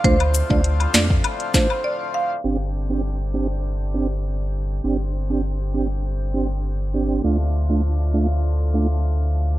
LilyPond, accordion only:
<<
  \new Staff \with { instrumentName = "Accordion" } { \time 4/4 \key g \dorian \tempo 4 = 100 c'1 | d'1 | c'1 | d'1 | }
  \new Staff \with { instrumentName = "Accordion" } { \clef bass \time 4/4 \key g \dorian << { <a, f f'>1 | <c g g'>1~ | <c g g'>1 | <a, f f'>1 | } \\ { d1 | d1~ | d1~ | d1 | } >> }
>>